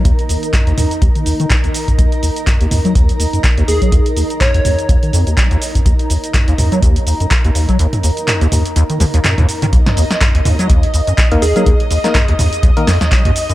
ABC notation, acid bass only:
X:1
M:4/4
L:1/16
Q:"Swing 16ths" 1/4=124
K:Ebm
V:1 name="Acid bass" clef=bass
E,, z E,, z2 E,, E,, z E,, E, E,, E, A,, E,, z G,, | E,, z E,, z2 E,, E,, G, E,, G,, E,, G,, z E,, E,, G, | E,, z E,, z2 E,, E,, z E,, E, F,, E,, G, E,, z G,, | E,, z E,, z2 E,, E,, G, E,, G,, E,, G,, z E,, E,, G, |
E,, z E,, z2 E,, E,, z E,, E, E,, E,, G,, E,, z E, | E,, z E,, z2 E,, E,, G, E,, G,, E,, G,, z E,, E,, G, | E,, z E,, z2 E,, E,, z E,, E, F,, E,, G, E,, z G,, |]